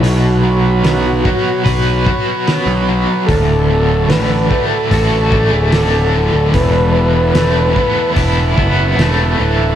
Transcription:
<<
  \new Staff \with { instrumentName = "Harmonium" } { \time 4/4 \key d \major \tempo 4 = 74 <fis' b' cis'' b''>1 | <fis' a' d'' a''>1 | <e' a' b' a''>1 | }
  \new Staff \with { instrumentName = "Transistor combo organ" } { \time 4/4 \key d \major fis'2 r2 | a'4 b'8. a'4 gis'16 a'4 | b'2 r2 | }
  \new Staff \with { instrumentName = "Overdriven electric guitar" } { \time 4/4 \key d \major b,8 fis8 b8 fis'8 b'8 fis'8 b8 fis8 | d,8 a,8 d8 a8 fis'8 a8 d8 a,8 | e,8 b,8 a8 b8 e'8 b8 a8 e8 | }
  \new Staff \with { instrumentName = "Picked electric bass" } { \clef bass \time 4/4 \key d \major b,,4 b,,8 r8 b,,8 r8. b,,8 r16 | d,,4 a,,8 r8 a,,8. d,,4 d,,16 | e,,4 e,,8 r8 e,,8 fis,,8 e,,8 d,,8 | }
  \new DrumStaff \with { instrumentName = "Drums" } \drummode { \time 4/4 hho4 <hho sn>8 bd8 <hho bd>8 bd8 <hho sn>4 | <hho bd>4 <hho sn>8 bd8 <hho bd>8 bd8 <hho sn>4 | <hho bd>4 <hho sn>8 bd8 <hho bd>8 bd8 <hho sn>4 | }
>>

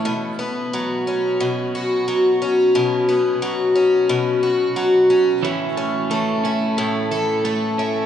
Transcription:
<<
  \new Staff \with { instrumentName = "Twelve-string acoustic guitar" } { \time 4/4 \key b \mixolydian \tempo 4 = 89 b,8 b8 fis8 cis'8 b,8 fis'8 fis8 cis'8 | b,8 b8 fis8 cis'8 b,8 fis'8 fis8 cis'8 | a,8 cis'8 a8 e'8 a,8 a'8 a8 e'8 | }
  \new Staff \with { instrumentName = "Clean electric guitar" } { \time 4/4 \key b \mixolydian r1 | r1 | <e cis'>8 a8 e8 cis'8 a8 e8 a8 cis'8 | }
>>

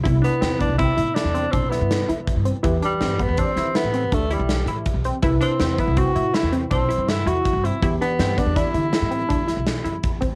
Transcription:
<<
  \new Staff \with { instrumentName = "Synth arpeggio sound" } { \time 7/4 \key c \lydian \tempo 4 = 162 e'8 d'8 c'8 b8 c'8 e'8 e'8 c'8 d'8 e'4 e'4 c'8 | e'8 d'8 c'8 b8 d'8 e'8 e'8 c'8 d'8 e'4 e'4 c'8 | e'8 d'8 c'8 b8 c'8 e'8 e'8 c'8 d'8 e'4 e'4 c'8 | e'8 d'8 c'8 b8 d'8 e'8 e'8 c'8 d'8 e'4 e'4 c'8 | }
  \new Staff \with { instrumentName = "Tine electric piano" } { \time 7/4 \key c \lydian <c b e'>1.~ <c b e'>4 | <e g' b'>1.~ <e g' b'>4 | <c e' b'>1.~ <c e' b'>4 | <e b g'>1.~ <e b g'>4 | }
  \new Staff \with { instrumentName = "Tenor saxophone" } { \time 7/4 \key c \lydian r8 b4 d'8 e'4 d'4 c'8 b4 r4. | r8 g4 b8 c'4 b4 a8 g4 r4. | r8 c'4 e'8 fis'4 e'8 r8 c'4 e'8 fis'4 e'8 | r8 b4 d'8 e'1 r4 | }
  \new Staff \with { instrumentName = "Upright bass" } { \clef bass \time 7/4 \key c \lydian c,8 r8 e,8. c,8 r16 a,8 r16 e,8. b,,8. g,8. e,8 r16 g,8 r16 | e,8 r8 g,8. e,8 r16 d8 r16 a,8. d,8. b,,8. a,8 r16 b,,8 r16 | c,8 r8 e,8. c,8 r16 a,8 r16 e,8. b,,8. g,8. e,8 r16 g,8 r16 | e,8 r8 g,8. e,8 r16 d8 r16 a,8. d,8. b,,8. fis,8 e,8 d,8 | }
  \new DrumStaff \with { instrumentName = "Drums" } \drummode { \time 7/4 <hh bd>8 hh8 <hh sn>8 <hh bd>8 <hh bd>8 hh8 <hh sn>8 hh8 <hh bd>8 <hh sn>8 <hh sn>8 hh8 <hh bd>8 hh8 | <hh bd>8 hh8 <hh sn>8 <hh bd>8 <hh bd>8 <hh sn>8 <hh sn>8 hh8 <hh bd>8 hh8 <hh sn>8 hh8 <hh bd>8 hh8 | <hh bd>8 hh8 <hh sn>8 <hh bd>8 <hh bd>8 hh8 <hh sn>8 hh8 <hh bd>8 hh8 <hh sn>8 hh8 <hh bd>8 hh8 | <hh bd>8 hh8 <hh sn>8 <hh bd sn>8 <hh bd sn>8 hh8 <hh sn>8 hh8 <hh bd>8 <hh sn>8 <hh sn>8 hh8 <hh bd>8 <hh bd>8 | }
>>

